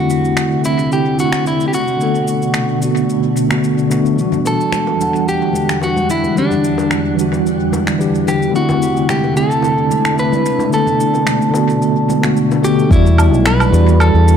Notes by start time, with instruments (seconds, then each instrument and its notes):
Already playing: ambient pad C3 A3 D4 E4, tine electric piano D3 A3 C4 E4, clean electric guitar F#4
0.10 shaker
0.25 shaker
0.37 finger snap, shaker
0.62 tine electric piano D3 A3 C4, shaker
0.66 clean electric guitar E4, tine electric piano E4
0.79 shaker
0.92 clean electric guitar G4, shaker
1.19 clean electric guitar F#4, shaker
1.33 finger snap, shaker
1.46 clean electric guitar E4, shaker
1.60 shaker
1.68 clean electric guitar G4
1.73 ambient pad B2, clean electric guitar F#4, shaker
1.88 shaker
1.97 tine electric piano D3 A3 B3, shaker
2.03 tine electric piano A4
2.15 shaker
2.28 shaker
2.42 shaker
2.54 finger snap, shaker
2.79 tine electric piano D3 A3 B3, shaker
2.84 tine electric piano F#4
2.97 shaker
3.10 shaker
3.37 shaker
3.49 tine electric piano D3 A3 B3 F#4, finger snap, shaker
3.64 shaker
3.79 shaker
3.89 tine electric piano D3 A3 B3 F#4, shaker
4.06 shaker
4.16 ambient pad E2 D3 G3 F#5, tine electric piano E3 G3 D4, shaker
4.21 tine electric piano F#4
4.32 low conga, shaker
4.45 clean electric guitar A4, high bongo, shaker
4.61 shaker
4.72 finger snap, high conga, shaker
4.87 high bongo
4.97 tine electric piano E3 G3 D4, shaker
5.03 tine electric piano F#5
5.15 shaker
5.28 clean electric guitar G4, shaker
5.42 high bongo
5.53 high conga, shaker
5.69 finger snap, shaker
5.82 clean electric guitar F#4, high bongo, shaker
5.96 high conga, shaker
6.10 clean electric guitar E4, shaker
6.24 high conga, shaker
6.33 tine electric piano E3 G3, high bongo, shaker
6.37 tine electric piano D4 G4, clean electric guitar D4
6.51 low conga, shaker
6.64 shaker
6.78 high bongo, shaker
6.91 finger snap, high conga, shaker
7.15 tine electric piano E3 G3 D4
7.19 tine electric piano F#4, shaker
7.32 high bongo, shaker
7.46 shaker
7.72 high bongo, high conga, shaker
7.87 finger snap, high conga, shaker
7.98 tine electric piano E3 G3 D4 G4, shaker
8.15 shaker
8.28 clean electric guitar G4, high bongo, shaker
8.42 shaker
8.51 ambient pad C3 A3 D4 E4, tine electric piano D3 A3 C4
8.55 tine electric piano E4, clean electric guitar F#4, shaker
8.69 high bongo, low conga, shaker
8.82 shaker
8.97 shaker
9.09 clean electric guitar G4, finger snap, high conga, shaker
9.24 high bongo
9.33 tine electric piano D3 A3 C4, clean electric guitar A4, shaker
9.39 tine electric piano E4
9.51 shaker
9.62 high bongo, shaker
9.90 high conga, shaker
10.05 finger snap, shaker
10.18 clean electric guitar B4, high bongo, shaker
10.32 high conga, shaker
10.46 ambient pad B2, shaker
10.59 high bongo, high conga, shaker
10.69 tine electric piano D3 A3 B3, shaker
10.74 clean electric guitar A4, tine electric piano A4
10.86 low conga, shaker
11.00 shaker
11.14 high bongo, shaker
11.26 finger snap, high conga, shaker
11.42 shaker
11.51 tine electric piano D3 A3, high bongo
11.55 tine electric piano B3 F#4, shaker
11.70 shaker
11.82 shaker
12.09 high bongo, high conga, shaker
12.21 tine electric piano D3 A3 B3 F#4, finger snap, high conga, shaker
12.37 shaker
12.51 high bongo, shaker
12.62 tine electric piano D3 A3 B3 F#4, clean electric guitar G4, shaker
12.79 shaker
12.88 fingered electric bass E2, ambient pad E3 G3 D4 F#4, tine electric piano G3 E4 F#4, kick, shaker
12.92 clean electric guitar E4, tine electric piano D5
13.06 shaker
13.18 low woodblock, shaker
13.33 fingered electric bass B1, shaker
13.46 clean electric guitar B4, finger snap, shaker
13.60 low woodblock, shaker
13.69 fingered electric bass E2, tine electric piano G3 E4 F#4
13.74 tine electric piano D5, shaker
13.88 shaker
14.00 clean electric guitar A4, low woodblock, shaker
14.14 fingered electric bass E2
14.28 shaker